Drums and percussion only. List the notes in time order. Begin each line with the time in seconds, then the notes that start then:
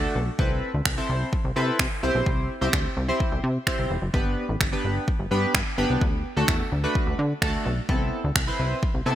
0.39 kick
0.85 finger snap, kick
1.33 kick
1.79 finger snap, kick
2.26 kick
2.73 finger snap, kick
3.20 kick
3.67 finger snap, kick
4.14 kick
4.61 finger snap, kick
5.08 kick
5.54 finger snap, kick
6.01 kick
6.48 finger snap, kick
6.95 kick
7.42 finger snap, kick
7.89 kick
8.36 finger snap, kick
8.83 kick